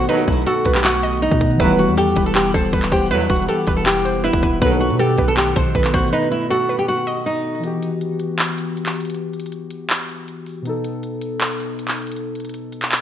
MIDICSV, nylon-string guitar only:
0, 0, Header, 1, 2, 480
1, 0, Start_track
1, 0, Key_signature, 1, "minor"
1, 0, Tempo, 377358
1, 113, Time_signature, 4, 2, 24, 8
1, 16551, End_track
2, 0, Start_track
2, 0, Title_t, "Nylon-string guitar"
2, 0, Program_c, 0, 24
2, 113, Note_on_c, 0, 63, 89
2, 295, Note_off_c, 0, 63, 0
2, 352, Note_on_c, 0, 64, 74
2, 535, Note_off_c, 0, 64, 0
2, 594, Note_on_c, 0, 66, 88
2, 932, Note_off_c, 0, 66, 0
2, 952, Note_on_c, 0, 67, 73
2, 1043, Note_off_c, 0, 67, 0
2, 1075, Note_on_c, 0, 66, 91
2, 1525, Note_off_c, 0, 66, 0
2, 1555, Note_on_c, 0, 63, 88
2, 2005, Note_off_c, 0, 63, 0
2, 2034, Note_on_c, 0, 64, 91
2, 2216, Note_off_c, 0, 64, 0
2, 2277, Note_on_c, 0, 66, 76
2, 2458, Note_off_c, 0, 66, 0
2, 2514, Note_on_c, 0, 67, 93
2, 2852, Note_off_c, 0, 67, 0
2, 2876, Note_on_c, 0, 69, 75
2, 2966, Note_off_c, 0, 69, 0
2, 2992, Note_on_c, 0, 67, 90
2, 3174, Note_off_c, 0, 67, 0
2, 3233, Note_on_c, 0, 69, 80
2, 3684, Note_off_c, 0, 69, 0
2, 3710, Note_on_c, 0, 67, 75
2, 3893, Note_off_c, 0, 67, 0
2, 3954, Note_on_c, 0, 64, 84
2, 4136, Note_off_c, 0, 64, 0
2, 4194, Note_on_c, 0, 66, 77
2, 4376, Note_off_c, 0, 66, 0
2, 4431, Note_on_c, 0, 67, 81
2, 4771, Note_off_c, 0, 67, 0
2, 4791, Note_on_c, 0, 69, 77
2, 4883, Note_off_c, 0, 69, 0
2, 4910, Note_on_c, 0, 67, 90
2, 5363, Note_off_c, 0, 67, 0
2, 5395, Note_on_c, 0, 64, 86
2, 5845, Note_off_c, 0, 64, 0
2, 5872, Note_on_c, 0, 71, 90
2, 6055, Note_off_c, 0, 71, 0
2, 6112, Note_on_c, 0, 66, 84
2, 6295, Note_off_c, 0, 66, 0
2, 6353, Note_on_c, 0, 67, 94
2, 6691, Note_off_c, 0, 67, 0
2, 6716, Note_on_c, 0, 69, 80
2, 6806, Note_off_c, 0, 69, 0
2, 6833, Note_on_c, 0, 67, 83
2, 7015, Note_off_c, 0, 67, 0
2, 7074, Note_on_c, 0, 69, 80
2, 7525, Note_off_c, 0, 69, 0
2, 7553, Note_on_c, 0, 66, 82
2, 7735, Note_off_c, 0, 66, 0
2, 7794, Note_on_c, 0, 63, 89
2, 7976, Note_off_c, 0, 63, 0
2, 8032, Note_on_c, 0, 64, 77
2, 8215, Note_off_c, 0, 64, 0
2, 8274, Note_on_c, 0, 66, 88
2, 8612, Note_off_c, 0, 66, 0
2, 8632, Note_on_c, 0, 67, 74
2, 8724, Note_off_c, 0, 67, 0
2, 8756, Note_on_c, 0, 66, 91
2, 9205, Note_off_c, 0, 66, 0
2, 9236, Note_on_c, 0, 63, 86
2, 9686, Note_off_c, 0, 63, 0
2, 16551, End_track
0, 0, End_of_file